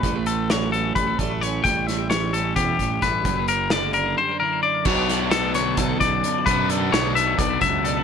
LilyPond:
<<
  \new Staff \with { instrumentName = "Clean electric guitar" } { \time 7/8 \key fis \phrygian \tempo 4 = 130 b'8 a'8 cis''8 a'8 b'8 a'8 cis''8 | g''8 e''8 cis''8 a'8 g'4 b'8~ | b'8 ais'8 d''8 ais'8 c''8 ais'8 d''8 | \key b \minor cis''4 a'8 cis''8 a'8 d''4 |
b'8 a'8 cis''8 e''8 d''8 e''8 a'8 | }
  \new Staff \with { instrumentName = "Clean electric guitar" } { \time 7/8 \key fis \phrygian << { g16 a8. d'16 e'16 cis'8 g16 a16 d'16 e'16 cis'8 | g4 g'8 cis'2 | g16 ais8. d'8 d'8 g16 ais16 e'8 d'8 | \key b \minor r8 d'2~ d'8 d'16 e'16 |
r8 d'2~ d'8 d'16 e'16 | } \\ { a,4 fis4. a,4 | a,4 e4 b,8 a,8 g,8 | fis,4 d4. d4 | b,4. d4 fis,4 |
b,4. r4 fis,4 | } >> }
  \new Staff \with { instrumentName = "Overdriven electric guitar" } { \clef bass \time 7/8 \key fis \phrygian r2. r8 | r2. r8 | r2. r8 | \key b \minor <b, fis b d'>2.~ <b, fis b d'>8 |
<b, fis b d'>2.~ <b, fis b d'>8 | }
  \new Staff \with { instrumentName = "Fingered electric bass" } { \clef bass \time 7/8 \key fis \phrygian a,,2 a,,8 a,,4 | a,,2 e,8 a,,8 a,,8 | fis,,2 r4. | \key b \minor b,,2 b,,8 b,,8 r8 |
fis,4 b,,4 b,,8 cis,4 | }
  \new DrumStaff \with { instrumentName = "Drums" } \drummode { \time 7/8 <hh bd>8 hh8 <hh sn>8 hh8 <hh bd>8 <hh bd>8 hh8 | <hh bd>8 <hh sn>8 <hh sn>8 hh8 <hh bd sn>8 <hh bd>8 <hh bd sn>8 | <hh bd>8 hh8 <hh sn>8 hh8 r4. | <cymc bd>8 <hh sn>8 <hh sn>8 <hh sn>8 <hh bd sn>8 <hh bd sn>8 hh8 |
<hh bd>8 hh8 <hh sn>8 hh8 <hh bd>8 <hh bd sn>8 hh8 | }
>>